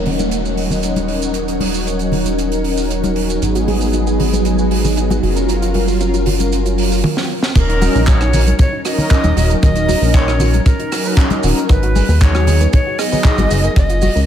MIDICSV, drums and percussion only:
0, 0, Header, 1, 2, 480
1, 0, Start_track
1, 0, Key_signature, -6, "minor"
1, 0, Tempo, 517241
1, 1254, Time_signature, 4, 2, 24, 8
1, 13235, End_track
2, 0, Start_track
2, 0, Title_t, "Drums"
2, 53, Note_on_c, 9, 46, 95
2, 60, Note_on_c, 9, 64, 66
2, 146, Note_off_c, 9, 46, 0
2, 153, Note_off_c, 9, 64, 0
2, 175, Note_on_c, 9, 42, 55
2, 180, Note_on_c, 9, 63, 58
2, 180, Note_on_c, 9, 82, 65
2, 268, Note_off_c, 9, 42, 0
2, 273, Note_off_c, 9, 63, 0
2, 273, Note_off_c, 9, 82, 0
2, 292, Note_on_c, 9, 42, 85
2, 296, Note_on_c, 9, 82, 60
2, 385, Note_off_c, 9, 42, 0
2, 389, Note_off_c, 9, 82, 0
2, 421, Note_on_c, 9, 82, 42
2, 514, Note_off_c, 9, 82, 0
2, 532, Note_on_c, 9, 46, 100
2, 625, Note_off_c, 9, 46, 0
2, 653, Note_on_c, 9, 64, 66
2, 662, Note_on_c, 9, 82, 66
2, 746, Note_off_c, 9, 64, 0
2, 755, Note_off_c, 9, 82, 0
2, 770, Note_on_c, 9, 42, 87
2, 770, Note_on_c, 9, 82, 64
2, 863, Note_off_c, 9, 42, 0
2, 863, Note_off_c, 9, 82, 0
2, 893, Note_on_c, 9, 42, 47
2, 893, Note_on_c, 9, 63, 78
2, 895, Note_on_c, 9, 82, 45
2, 985, Note_off_c, 9, 63, 0
2, 986, Note_off_c, 9, 42, 0
2, 988, Note_off_c, 9, 82, 0
2, 1005, Note_on_c, 9, 46, 88
2, 1097, Note_off_c, 9, 46, 0
2, 1127, Note_on_c, 9, 42, 47
2, 1136, Note_on_c, 9, 82, 74
2, 1220, Note_off_c, 9, 42, 0
2, 1229, Note_off_c, 9, 82, 0
2, 1243, Note_on_c, 9, 42, 83
2, 1249, Note_on_c, 9, 82, 58
2, 1336, Note_off_c, 9, 42, 0
2, 1342, Note_off_c, 9, 82, 0
2, 1375, Note_on_c, 9, 42, 60
2, 1375, Note_on_c, 9, 82, 43
2, 1467, Note_off_c, 9, 42, 0
2, 1468, Note_off_c, 9, 82, 0
2, 1487, Note_on_c, 9, 63, 81
2, 1491, Note_on_c, 9, 46, 102
2, 1580, Note_off_c, 9, 63, 0
2, 1584, Note_off_c, 9, 46, 0
2, 1618, Note_on_c, 9, 82, 66
2, 1711, Note_off_c, 9, 82, 0
2, 1736, Note_on_c, 9, 42, 72
2, 1742, Note_on_c, 9, 82, 57
2, 1829, Note_off_c, 9, 42, 0
2, 1835, Note_off_c, 9, 82, 0
2, 1849, Note_on_c, 9, 42, 45
2, 1859, Note_on_c, 9, 82, 43
2, 1942, Note_off_c, 9, 42, 0
2, 1952, Note_off_c, 9, 82, 0
2, 1966, Note_on_c, 9, 64, 68
2, 1974, Note_on_c, 9, 46, 92
2, 2059, Note_off_c, 9, 64, 0
2, 2067, Note_off_c, 9, 46, 0
2, 2088, Note_on_c, 9, 63, 54
2, 2094, Note_on_c, 9, 42, 55
2, 2096, Note_on_c, 9, 82, 67
2, 2181, Note_off_c, 9, 63, 0
2, 2186, Note_off_c, 9, 42, 0
2, 2189, Note_off_c, 9, 82, 0
2, 2213, Note_on_c, 9, 42, 76
2, 2216, Note_on_c, 9, 82, 59
2, 2306, Note_off_c, 9, 42, 0
2, 2309, Note_off_c, 9, 82, 0
2, 2336, Note_on_c, 9, 42, 51
2, 2341, Note_on_c, 9, 82, 45
2, 2429, Note_off_c, 9, 42, 0
2, 2433, Note_off_c, 9, 82, 0
2, 2453, Note_on_c, 9, 46, 95
2, 2546, Note_off_c, 9, 46, 0
2, 2574, Note_on_c, 9, 82, 72
2, 2667, Note_off_c, 9, 82, 0
2, 2695, Note_on_c, 9, 42, 82
2, 2700, Note_on_c, 9, 82, 64
2, 2788, Note_off_c, 9, 42, 0
2, 2793, Note_off_c, 9, 82, 0
2, 2817, Note_on_c, 9, 42, 48
2, 2817, Note_on_c, 9, 63, 86
2, 2823, Note_on_c, 9, 82, 46
2, 2910, Note_off_c, 9, 42, 0
2, 2910, Note_off_c, 9, 63, 0
2, 2915, Note_off_c, 9, 82, 0
2, 2931, Note_on_c, 9, 46, 100
2, 3024, Note_off_c, 9, 46, 0
2, 3058, Note_on_c, 9, 42, 44
2, 3062, Note_on_c, 9, 82, 72
2, 3151, Note_off_c, 9, 42, 0
2, 3155, Note_off_c, 9, 82, 0
2, 3175, Note_on_c, 9, 42, 81
2, 3177, Note_on_c, 9, 82, 65
2, 3268, Note_off_c, 9, 42, 0
2, 3270, Note_off_c, 9, 82, 0
2, 3297, Note_on_c, 9, 42, 55
2, 3301, Note_on_c, 9, 82, 47
2, 3389, Note_off_c, 9, 42, 0
2, 3394, Note_off_c, 9, 82, 0
2, 3414, Note_on_c, 9, 63, 86
2, 3415, Note_on_c, 9, 46, 97
2, 3507, Note_off_c, 9, 63, 0
2, 3508, Note_off_c, 9, 46, 0
2, 3534, Note_on_c, 9, 82, 65
2, 3627, Note_off_c, 9, 82, 0
2, 3648, Note_on_c, 9, 82, 61
2, 3653, Note_on_c, 9, 42, 80
2, 3740, Note_off_c, 9, 82, 0
2, 3746, Note_off_c, 9, 42, 0
2, 3776, Note_on_c, 9, 82, 44
2, 3869, Note_off_c, 9, 82, 0
2, 3895, Note_on_c, 9, 46, 104
2, 3897, Note_on_c, 9, 64, 75
2, 3987, Note_off_c, 9, 46, 0
2, 3990, Note_off_c, 9, 64, 0
2, 4019, Note_on_c, 9, 63, 64
2, 4024, Note_on_c, 9, 42, 57
2, 4026, Note_on_c, 9, 82, 67
2, 4112, Note_off_c, 9, 63, 0
2, 4117, Note_off_c, 9, 42, 0
2, 4119, Note_off_c, 9, 82, 0
2, 4129, Note_on_c, 9, 42, 77
2, 4138, Note_on_c, 9, 82, 61
2, 4222, Note_off_c, 9, 42, 0
2, 4230, Note_off_c, 9, 82, 0
2, 4254, Note_on_c, 9, 82, 49
2, 4347, Note_off_c, 9, 82, 0
2, 4371, Note_on_c, 9, 46, 104
2, 4464, Note_off_c, 9, 46, 0
2, 4497, Note_on_c, 9, 64, 67
2, 4498, Note_on_c, 9, 82, 73
2, 4590, Note_off_c, 9, 64, 0
2, 4591, Note_off_c, 9, 82, 0
2, 4614, Note_on_c, 9, 42, 81
2, 4617, Note_on_c, 9, 82, 55
2, 4707, Note_off_c, 9, 42, 0
2, 4710, Note_off_c, 9, 82, 0
2, 4736, Note_on_c, 9, 63, 86
2, 4742, Note_on_c, 9, 42, 51
2, 4744, Note_on_c, 9, 82, 46
2, 4829, Note_off_c, 9, 63, 0
2, 4835, Note_off_c, 9, 42, 0
2, 4837, Note_off_c, 9, 82, 0
2, 4856, Note_on_c, 9, 46, 90
2, 4949, Note_off_c, 9, 46, 0
2, 4976, Note_on_c, 9, 42, 45
2, 4979, Note_on_c, 9, 82, 64
2, 5069, Note_off_c, 9, 42, 0
2, 5072, Note_off_c, 9, 82, 0
2, 5092, Note_on_c, 9, 82, 65
2, 5098, Note_on_c, 9, 42, 83
2, 5185, Note_off_c, 9, 82, 0
2, 5191, Note_off_c, 9, 42, 0
2, 5219, Note_on_c, 9, 82, 44
2, 5221, Note_on_c, 9, 42, 59
2, 5312, Note_off_c, 9, 82, 0
2, 5314, Note_off_c, 9, 42, 0
2, 5328, Note_on_c, 9, 46, 96
2, 5335, Note_on_c, 9, 63, 78
2, 5421, Note_off_c, 9, 46, 0
2, 5428, Note_off_c, 9, 63, 0
2, 5456, Note_on_c, 9, 82, 67
2, 5549, Note_off_c, 9, 82, 0
2, 5573, Note_on_c, 9, 82, 57
2, 5575, Note_on_c, 9, 42, 74
2, 5666, Note_off_c, 9, 82, 0
2, 5668, Note_off_c, 9, 42, 0
2, 5696, Note_on_c, 9, 42, 45
2, 5700, Note_on_c, 9, 82, 47
2, 5789, Note_off_c, 9, 42, 0
2, 5793, Note_off_c, 9, 82, 0
2, 5809, Note_on_c, 9, 46, 104
2, 5817, Note_on_c, 9, 64, 73
2, 5902, Note_off_c, 9, 46, 0
2, 5910, Note_off_c, 9, 64, 0
2, 5938, Note_on_c, 9, 63, 66
2, 5939, Note_on_c, 9, 82, 76
2, 5940, Note_on_c, 9, 42, 65
2, 6031, Note_off_c, 9, 63, 0
2, 6032, Note_off_c, 9, 82, 0
2, 6033, Note_off_c, 9, 42, 0
2, 6053, Note_on_c, 9, 82, 66
2, 6057, Note_on_c, 9, 42, 82
2, 6146, Note_off_c, 9, 82, 0
2, 6150, Note_off_c, 9, 42, 0
2, 6178, Note_on_c, 9, 82, 46
2, 6179, Note_on_c, 9, 42, 51
2, 6270, Note_off_c, 9, 82, 0
2, 6272, Note_off_c, 9, 42, 0
2, 6293, Note_on_c, 9, 46, 107
2, 6386, Note_off_c, 9, 46, 0
2, 6420, Note_on_c, 9, 82, 74
2, 6513, Note_off_c, 9, 82, 0
2, 6532, Note_on_c, 9, 48, 59
2, 6625, Note_off_c, 9, 48, 0
2, 6653, Note_on_c, 9, 38, 60
2, 6746, Note_off_c, 9, 38, 0
2, 6891, Note_on_c, 9, 38, 72
2, 6984, Note_off_c, 9, 38, 0
2, 7011, Note_on_c, 9, 36, 121
2, 7012, Note_on_c, 9, 42, 93
2, 7013, Note_on_c, 9, 37, 64
2, 7015, Note_on_c, 9, 82, 61
2, 7016, Note_on_c, 9, 49, 107
2, 7104, Note_off_c, 9, 36, 0
2, 7104, Note_off_c, 9, 42, 0
2, 7106, Note_off_c, 9, 37, 0
2, 7108, Note_off_c, 9, 82, 0
2, 7109, Note_off_c, 9, 49, 0
2, 7142, Note_on_c, 9, 42, 64
2, 7235, Note_off_c, 9, 42, 0
2, 7254, Note_on_c, 9, 63, 100
2, 7254, Note_on_c, 9, 82, 87
2, 7263, Note_on_c, 9, 46, 97
2, 7347, Note_off_c, 9, 63, 0
2, 7347, Note_off_c, 9, 82, 0
2, 7356, Note_off_c, 9, 46, 0
2, 7383, Note_on_c, 9, 82, 49
2, 7476, Note_off_c, 9, 82, 0
2, 7491, Note_on_c, 9, 39, 114
2, 7496, Note_on_c, 9, 36, 109
2, 7496, Note_on_c, 9, 42, 93
2, 7501, Note_on_c, 9, 82, 61
2, 7584, Note_off_c, 9, 39, 0
2, 7589, Note_off_c, 9, 36, 0
2, 7589, Note_off_c, 9, 42, 0
2, 7594, Note_off_c, 9, 82, 0
2, 7617, Note_on_c, 9, 37, 81
2, 7617, Note_on_c, 9, 82, 47
2, 7710, Note_off_c, 9, 37, 0
2, 7710, Note_off_c, 9, 82, 0
2, 7734, Note_on_c, 9, 46, 117
2, 7734, Note_on_c, 9, 64, 87
2, 7734, Note_on_c, 9, 82, 91
2, 7826, Note_off_c, 9, 64, 0
2, 7827, Note_off_c, 9, 46, 0
2, 7827, Note_off_c, 9, 82, 0
2, 7856, Note_on_c, 9, 82, 56
2, 7864, Note_on_c, 9, 63, 68
2, 7865, Note_on_c, 9, 42, 67
2, 7949, Note_off_c, 9, 82, 0
2, 7957, Note_off_c, 9, 42, 0
2, 7957, Note_off_c, 9, 63, 0
2, 7969, Note_on_c, 9, 42, 96
2, 7973, Note_on_c, 9, 82, 62
2, 7974, Note_on_c, 9, 36, 121
2, 8062, Note_off_c, 9, 42, 0
2, 8066, Note_off_c, 9, 82, 0
2, 8067, Note_off_c, 9, 36, 0
2, 8210, Note_on_c, 9, 46, 104
2, 8215, Note_on_c, 9, 37, 69
2, 8215, Note_on_c, 9, 82, 77
2, 8303, Note_off_c, 9, 46, 0
2, 8308, Note_off_c, 9, 37, 0
2, 8308, Note_off_c, 9, 82, 0
2, 8335, Note_on_c, 9, 64, 86
2, 8343, Note_on_c, 9, 82, 46
2, 8428, Note_off_c, 9, 64, 0
2, 8436, Note_off_c, 9, 82, 0
2, 8447, Note_on_c, 9, 82, 66
2, 8451, Note_on_c, 9, 36, 110
2, 8453, Note_on_c, 9, 39, 127
2, 8453, Note_on_c, 9, 42, 97
2, 8539, Note_off_c, 9, 82, 0
2, 8544, Note_off_c, 9, 36, 0
2, 8546, Note_off_c, 9, 39, 0
2, 8546, Note_off_c, 9, 42, 0
2, 8571, Note_on_c, 9, 42, 53
2, 8574, Note_on_c, 9, 63, 90
2, 8574, Note_on_c, 9, 82, 53
2, 8663, Note_off_c, 9, 42, 0
2, 8667, Note_off_c, 9, 63, 0
2, 8667, Note_off_c, 9, 82, 0
2, 8693, Note_on_c, 9, 46, 109
2, 8701, Note_on_c, 9, 82, 93
2, 8786, Note_off_c, 9, 46, 0
2, 8794, Note_off_c, 9, 82, 0
2, 8818, Note_on_c, 9, 82, 52
2, 8824, Note_on_c, 9, 42, 58
2, 8911, Note_off_c, 9, 82, 0
2, 8917, Note_off_c, 9, 42, 0
2, 8934, Note_on_c, 9, 42, 91
2, 8935, Note_on_c, 9, 36, 117
2, 8937, Note_on_c, 9, 37, 62
2, 8939, Note_on_c, 9, 82, 58
2, 9027, Note_off_c, 9, 42, 0
2, 9028, Note_off_c, 9, 36, 0
2, 9030, Note_off_c, 9, 37, 0
2, 9032, Note_off_c, 9, 82, 0
2, 9053, Note_on_c, 9, 42, 71
2, 9062, Note_on_c, 9, 82, 50
2, 9145, Note_off_c, 9, 42, 0
2, 9155, Note_off_c, 9, 82, 0
2, 9174, Note_on_c, 9, 46, 117
2, 9174, Note_on_c, 9, 63, 89
2, 9178, Note_on_c, 9, 82, 86
2, 9266, Note_off_c, 9, 63, 0
2, 9267, Note_off_c, 9, 46, 0
2, 9271, Note_off_c, 9, 82, 0
2, 9307, Note_on_c, 9, 82, 51
2, 9399, Note_off_c, 9, 82, 0
2, 9411, Note_on_c, 9, 36, 127
2, 9414, Note_on_c, 9, 82, 60
2, 9421, Note_on_c, 9, 39, 122
2, 9503, Note_off_c, 9, 36, 0
2, 9507, Note_off_c, 9, 82, 0
2, 9513, Note_off_c, 9, 39, 0
2, 9541, Note_on_c, 9, 37, 83
2, 9543, Note_on_c, 9, 82, 48
2, 9634, Note_off_c, 9, 37, 0
2, 9636, Note_off_c, 9, 82, 0
2, 9648, Note_on_c, 9, 64, 80
2, 9650, Note_on_c, 9, 46, 101
2, 9651, Note_on_c, 9, 82, 84
2, 9741, Note_off_c, 9, 64, 0
2, 9743, Note_off_c, 9, 46, 0
2, 9744, Note_off_c, 9, 82, 0
2, 9776, Note_on_c, 9, 82, 49
2, 9782, Note_on_c, 9, 42, 69
2, 9783, Note_on_c, 9, 63, 65
2, 9869, Note_off_c, 9, 82, 0
2, 9875, Note_off_c, 9, 42, 0
2, 9875, Note_off_c, 9, 63, 0
2, 9890, Note_on_c, 9, 42, 85
2, 9892, Note_on_c, 9, 36, 117
2, 9896, Note_on_c, 9, 82, 56
2, 9983, Note_off_c, 9, 42, 0
2, 9985, Note_off_c, 9, 36, 0
2, 9989, Note_off_c, 9, 82, 0
2, 10018, Note_on_c, 9, 42, 50
2, 10111, Note_off_c, 9, 42, 0
2, 10133, Note_on_c, 9, 46, 112
2, 10135, Note_on_c, 9, 82, 80
2, 10136, Note_on_c, 9, 37, 72
2, 10226, Note_off_c, 9, 46, 0
2, 10228, Note_off_c, 9, 82, 0
2, 10229, Note_off_c, 9, 37, 0
2, 10257, Note_on_c, 9, 82, 48
2, 10350, Note_off_c, 9, 82, 0
2, 10365, Note_on_c, 9, 36, 127
2, 10374, Note_on_c, 9, 82, 58
2, 10376, Note_on_c, 9, 42, 96
2, 10379, Note_on_c, 9, 39, 127
2, 10458, Note_off_c, 9, 36, 0
2, 10466, Note_off_c, 9, 82, 0
2, 10469, Note_off_c, 9, 42, 0
2, 10472, Note_off_c, 9, 39, 0
2, 10489, Note_on_c, 9, 42, 57
2, 10492, Note_on_c, 9, 63, 100
2, 10497, Note_on_c, 9, 82, 52
2, 10582, Note_off_c, 9, 42, 0
2, 10584, Note_off_c, 9, 63, 0
2, 10590, Note_off_c, 9, 82, 0
2, 10609, Note_on_c, 9, 82, 84
2, 10612, Note_on_c, 9, 46, 117
2, 10701, Note_off_c, 9, 82, 0
2, 10704, Note_off_c, 9, 46, 0
2, 10737, Note_on_c, 9, 42, 55
2, 10743, Note_on_c, 9, 82, 56
2, 10830, Note_off_c, 9, 42, 0
2, 10836, Note_off_c, 9, 82, 0
2, 10850, Note_on_c, 9, 42, 87
2, 10852, Note_on_c, 9, 36, 119
2, 10854, Note_on_c, 9, 37, 70
2, 10858, Note_on_c, 9, 82, 61
2, 10943, Note_off_c, 9, 42, 0
2, 10945, Note_off_c, 9, 36, 0
2, 10947, Note_off_c, 9, 37, 0
2, 10951, Note_off_c, 9, 82, 0
2, 10977, Note_on_c, 9, 42, 59
2, 11070, Note_off_c, 9, 42, 0
2, 11095, Note_on_c, 9, 82, 78
2, 11096, Note_on_c, 9, 46, 108
2, 11097, Note_on_c, 9, 63, 104
2, 11187, Note_off_c, 9, 82, 0
2, 11189, Note_off_c, 9, 46, 0
2, 11190, Note_off_c, 9, 63, 0
2, 11223, Note_on_c, 9, 82, 52
2, 11315, Note_off_c, 9, 82, 0
2, 11333, Note_on_c, 9, 82, 63
2, 11334, Note_on_c, 9, 36, 116
2, 11336, Note_on_c, 9, 42, 91
2, 11340, Note_on_c, 9, 39, 115
2, 11426, Note_off_c, 9, 82, 0
2, 11427, Note_off_c, 9, 36, 0
2, 11429, Note_off_c, 9, 42, 0
2, 11432, Note_off_c, 9, 39, 0
2, 11459, Note_on_c, 9, 37, 83
2, 11460, Note_on_c, 9, 82, 45
2, 11552, Note_off_c, 9, 37, 0
2, 11553, Note_off_c, 9, 82, 0
2, 11573, Note_on_c, 9, 64, 86
2, 11574, Note_on_c, 9, 46, 109
2, 11579, Note_on_c, 9, 82, 84
2, 11666, Note_off_c, 9, 46, 0
2, 11666, Note_off_c, 9, 64, 0
2, 11672, Note_off_c, 9, 82, 0
2, 11695, Note_on_c, 9, 42, 62
2, 11697, Note_on_c, 9, 63, 71
2, 11700, Note_on_c, 9, 82, 52
2, 11787, Note_off_c, 9, 42, 0
2, 11790, Note_off_c, 9, 63, 0
2, 11793, Note_off_c, 9, 82, 0
2, 11812, Note_on_c, 9, 82, 57
2, 11813, Note_on_c, 9, 42, 85
2, 11818, Note_on_c, 9, 36, 115
2, 11905, Note_off_c, 9, 82, 0
2, 11906, Note_off_c, 9, 42, 0
2, 11910, Note_off_c, 9, 36, 0
2, 12051, Note_on_c, 9, 46, 109
2, 12054, Note_on_c, 9, 37, 80
2, 12058, Note_on_c, 9, 82, 78
2, 12143, Note_off_c, 9, 46, 0
2, 12146, Note_off_c, 9, 37, 0
2, 12151, Note_off_c, 9, 82, 0
2, 12180, Note_on_c, 9, 82, 48
2, 12185, Note_on_c, 9, 64, 75
2, 12273, Note_off_c, 9, 82, 0
2, 12277, Note_off_c, 9, 64, 0
2, 12289, Note_on_c, 9, 39, 127
2, 12292, Note_on_c, 9, 36, 117
2, 12295, Note_on_c, 9, 82, 59
2, 12382, Note_off_c, 9, 39, 0
2, 12385, Note_off_c, 9, 36, 0
2, 12388, Note_off_c, 9, 82, 0
2, 12415, Note_on_c, 9, 82, 51
2, 12420, Note_on_c, 9, 42, 55
2, 12428, Note_on_c, 9, 63, 96
2, 12508, Note_off_c, 9, 82, 0
2, 12513, Note_off_c, 9, 42, 0
2, 12521, Note_off_c, 9, 63, 0
2, 12533, Note_on_c, 9, 82, 87
2, 12536, Note_on_c, 9, 46, 109
2, 12626, Note_off_c, 9, 82, 0
2, 12629, Note_off_c, 9, 46, 0
2, 12654, Note_on_c, 9, 42, 58
2, 12655, Note_on_c, 9, 82, 56
2, 12746, Note_off_c, 9, 42, 0
2, 12747, Note_off_c, 9, 82, 0
2, 12772, Note_on_c, 9, 36, 127
2, 12775, Note_on_c, 9, 82, 55
2, 12776, Note_on_c, 9, 37, 69
2, 12778, Note_on_c, 9, 42, 78
2, 12865, Note_off_c, 9, 36, 0
2, 12868, Note_off_c, 9, 82, 0
2, 12869, Note_off_c, 9, 37, 0
2, 12871, Note_off_c, 9, 42, 0
2, 12895, Note_on_c, 9, 82, 44
2, 12896, Note_on_c, 9, 42, 62
2, 12988, Note_off_c, 9, 82, 0
2, 12989, Note_off_c, 9, 42, 0
2, 13006, Note_on_c, 9, 82, 75
2, 13017, Note_on_c, 9, 63, 104
2, 13018, Note_on_c, 9, 46, 115
2, 13099, Note_off_c, 9, 82, 0
2, 13109, Note_off_c, 9, 63, 0
2, 13111, Note_off_c, 9, 46, 0
2, 13143, Note_on_c, 9, 82, 52
2, 13235, Note_off_c, 9, 82, 0
2, 13235, End_track
0, 0, End_of_file